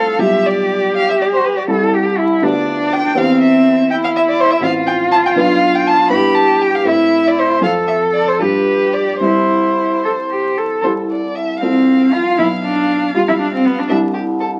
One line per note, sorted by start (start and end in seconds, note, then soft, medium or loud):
0.00 0.18 C2 soft
0.00 0.18 A3 soft
0.00 0.18 F4 soft
0.00 0.21 A4 soft
0.00 0.18 C5 soft
0.00 0.21 F5 medium
0.18 1.64 B1 soft
0.18 1.65 G3 soft
0.18 1.65 F4 soft
0.18 1.69 G4 medium
0.18 1.65 G4 soft
0.18 0.48 E5 medium
0.46 0.96 D5 medium
0.96 1.08 F5 medium
1.10 1.14 E5 medium
1.21 1.26 D5 medium
1.34 1.47 C5 medium
1.45 1.57 B4 medium
1.57 1.62 D5 medium
1.68 2.41 C2 soft
1.68 2.41 G3 soft
1.68 2.42 E4 soft
1.68 2.42 G4 soft
1.68 1.96 A4 medium
1.94 2.19 G4 medium
2.18 2.45 E4 medium
2.42 3.14 D2 soft
2.42 3.14 B3 soft
2.42 3.17 D4 medium
2.42 3.15 F4 soft
2.42 3.14 G4 soft
2.42 2.95 D5 medium
2.94 3.20 G5 medium
3.15 4.59 E2 medium
3.15 4.59 C4 soft
3.15 3.89 C4 medium
3.15 4.59 G4 soft
3.15 4.59 C5 soft
3.15 3.40 F5 medium
3.41 3.89 E5 medium
3.91 4.64 E4 medium
3.91 3.96 G5 medium
4.04 4.09 F5 medium
4.16 4.21 E5 medium
4.29 4.42 D5 medium
4.40 4.53 C5 medium
4.51 4.62 E5 medium
4.61 5.33 A1 medium
4.61 5.34 C4 soft
4.61 5.34 F4 soft
4.61 6.11 F4 medium
4.61 5.34 C5 soft
4.61 4.71 F5 medium
4.87 4.95 G5 medium
5.12 5.17 A5 medium
5.26 5.31 G5 medium
5.36 6.09 B1 medium
5.36 6.09 D4 soft
5.36 6.09 F4 soft
5.36 6.09 B4 soft
5.36 5.77 F5 medium
5.75 5.89 G5 medium
5.87 6.10 A5 medium
6.09 6.84 G2 soft
6.09 6.84 B3 soft
6.09 6.84 E4 soft
6.09 6.89 G4 medium
6.09 6.85 B4 soft
6.09 6.36 B5 medium
6.35 6.63 A5 medium
6.62 6.77 G5 medium
6.75 6.87 F5 medium
6.85 7.60 A2 soft
6.85 7.60 C4 soft
6.85 7.60 E4 soft
6.85 7.62 E4 medium
6.85 7.60 A4 soft
6.85 7.29 E5 medium
7.28 7.41 D5 medium
7.39 7.63 C5 medium
7.61 8.38 F2 soft
7.61 8.38 C4 soft
7.61 8.38 F4 soft
7.61 8.38 A4 soft
7.61 8.43 A4 medium
7.61 7.71 F5 medium
7.88 7.96 E5 soft
8.14 8.29 D5 medium
8.28 8.40 C5 soft
8.39 9.19 G2 soft
8.39 9.19 G3 soft
8.39 9.19 F4 soft
8.39 9.20 G4 soft
8.39 9.22 G4 soft
8.39 8.95 B4 medium
8.94 9.21 D5 soft
9.20 10.79 C2 soft
9.20 10.79 G3 soft
9.20 10.79 E4 soft
9.20 9.98 E4 soft
9.20 10.79 G4 soft
9.20 10.54 C5 soft
10.05 10.13 A4 soft
10.31 10.59 G4 soft
10.57 10.84 A4 soft
10.83 11.59 C2 soft
10.83 11.58 C4 soft
10.83 11.58 E4 soft
10.83 11.58 G4 soft
10.83 10.91 C5 soft
11.11 11.37 D5 soft
11.36 11.61 E5 soft
11.61 12.36 C2 soft
11.61 12.15 C4 medium
11.61 12.35 C4 soft
11.61 12.35 F4 soft
11.61 12.35 A4 soft
11.61 13.86 F5 medium
12.13 12.38 F4 medium
12.38 13.12 B1 soft
12.38 12.46 E4 medium
12.64 13.14 D4 medium
13.15 13.86 G3 soft
13.15 13.86 F4 soft
13.15 13.20 F4 medium
13.15 13.86 G4 soft
13.28 13.33 E4 soft
13.39 13.52 D4 medium
13.54 13.67 C4 soft
13.65 13.81 B3 medium
13.79 13.91 D4 soft
13.89 14.60 C2 soft
13.89 14.60 G3 soft
13.89 14.60 E4 soft
13.89 14.60 G4 soft
13.89 13.97 E5 medium
14.14 14.22 G4 soft
14.40 14.48 A4 soft